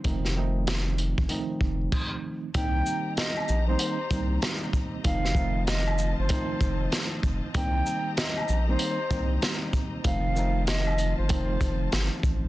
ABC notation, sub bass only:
X:1
M:4/4
L:1/16
Q:"Swing 16ths" 1/4=96
K:Cdor
V:1 name="Sub bass" clef=bass
F,,,6- F,,, G,,, z2 F,,,2 z4 | C,,2 z4 B,,,2 z2 C,,2 z4 | F,,,6- F,,, G,,, z2 F,,,2 z2 F,,, z | C,,2 z4 B,,,2 z2 C,,2 z4 |
F,,,6- F,,, G,,, F,,,2 F,,,2 G,,, z A,,, B,,, |]